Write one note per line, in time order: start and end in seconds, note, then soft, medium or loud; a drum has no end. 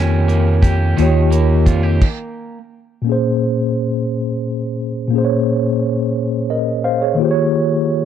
0.00 0.95 F2 medium
0.00 0.92 D#3 medium
0.00 0.96 D#3 medium
0.00 0.28 A#3 medium
0.00 0.93 A#3 medium
0.00 2.58 C#4 medium
0.00 0.95 F4 medium
0.00 0.61 G4 medium
0.00 0.96 G4 medium
0.00 0.97 C#5 medium
0.28 1.31 A#3 medium
0.28 closed hi-hat medium
0.62 1.66 G4 medium
0.62 kick medium
0.62 closed hi-hat medium
0.97 1.69 D#2 loud
0.97 2.08 D#3 medium
0.97 2.01 D#3 medium
0.97 2.02 A#3 medium
0.97 2.02 F4 medium
0.97 2.03 G4 medium
0.97 closed hi-hat medium
1.02 2.04 C#5 medium
1.31 2.58 A#3 medium
1.31 closed hi-hat medium
1.66 2.00 F2 medium
1.66 1.83 F4 medium
1.66 kick loud
1.66 closed hi-hat medium
1.83 2.08 G4 soft
2.02 kick loud
2.02 crash medium
3.02 5.06 A#2 medium
3.02 5.08 A#3 medium
3.06 5.09 C#4 medium
3.06 5.10 G#4 medium
3.12 5.11 C5 medium
5.08 7.13 A#2 medium
5.08 7.14 A#3 medium
5.13 7.15 C#4 medium
5.13 6.15 G#4 medium
5.18 5.21 C5 medium
5.25 6.20 C#5 medium
6.50 6.83 A#4 medium
6.50 6.83 D#5 medium
6.84 7.01 C5 medium
6.84 7.01 F5 medium
7.02 7.35 G#4 medium
7.02 7.30 C#5 medium
7.14 8.05 D#3 medium
7.14 8.05 A#3 medium
7.20 8.05 F4 medium
7.20 8.05 G4 medium
7.24 7.28 C5 medium
7.31 8.05 C#5 medium